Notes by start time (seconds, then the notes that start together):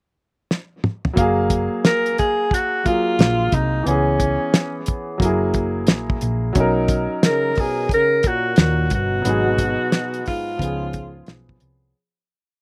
0.51 snare
0.84 mid tom
1.05 floor tom
1.13 F#1 F#3 A#3, kick, closed hi-hat
1.18 G#4 F5
1.50 kick, closed hi-hat
1.85 A#4, snare, closed hi-hat
2.06 closed hi-hat
2.18 G#4, kick, closed hi-hat
2.51 F#4, kick, closed hi-hat
2.84 F#3 A#3 F4 G#4, kick, closed hi-hat
3.19 A#1, snare, closed hi-hat
3.52 C2 D#4, kick, closed hi-hat
3.83 C#2 E3 B3, closed hi-hat
3.88 C#4 G#4
4.20 kick, closed hi-hat
4.54 snare, closed hi-hat
4.86 kick, closed hi-hat
5.18 F#1 F#3 A#3, kick
5.22 E4 G#4, closed hi-hat
5.54 kick, closed hi-hat
5.87 A#1, snare, closed hi-hat
6.10 kick
6.21 A#1, closed hi-hat
6.53 B1 F#3 C#4, kick, closed hi-hat
6.58 D#4 A#4
6.88 kick, closed hi-hat
7.23 C#3 A#4, snare, closed hi-hat
7.55 B2, kick, open hi-hat
7.60 G#4
7.89 C#3, kick, closed hi-hat
7.94 A#4
8.23 A#2, kick, closed hi-hat
8.27 F#4
8.56 D#2 A#2 F#4, snare, closed hi-hat
8.90 G1 B2, kick, closed hi-hat
8.95 F#4
9.22 G#1 F#3 B3, closed hi-hat
9.27 D#4 G#4
9.58 kick, closed hi-hat
9.92 snare, closed hi-hat
10.14 closed hi-hat
10.26 G#2 F4, kick, snare, open hi-hat
10.58 C#2 F3 B3, kick
10.62 C#4 G#4, closed hi-hat
10.93 kick, closed hi-hat
11.27 B1, snare, closed hi-hat
11.49 kick
11.60 C2, closed hi-hat